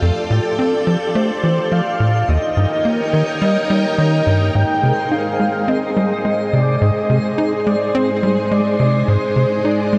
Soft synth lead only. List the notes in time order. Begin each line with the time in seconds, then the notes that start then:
0.03 A4
1.16 C5
1.72 F5
2.29 D#5
3.99 D#5
4.55 G5
5.12 F5
5.69 D#5
6.53 D5
6.82 D#5
7.67 D5
7.95 C5
8.52 D5
9.08 C5
9.65 D5